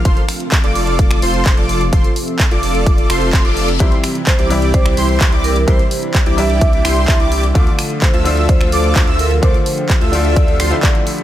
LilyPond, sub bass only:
\new Staff \with { instrumentName = "Sub bass" } { \clef bass \time 4/4 \key f \major \tempo 4 = 128 f,,16 r4 f,,4~ f,,16 f,,8 f,,16 f,,8. | f,,16 r4 f,,4~ f,,16 f,,8 f,,16 f,,8. | c,16 r4 c,4~ c,16 c,8 c,16 c,8. | c,16 r4 c,4~ c,16 c,8 c,16 c,8. |
d,16 r4 d,4~ d,16 d,8 d,16 d,8. | d,16 r4 d,4~ d,16 d,16 r4 r16 | }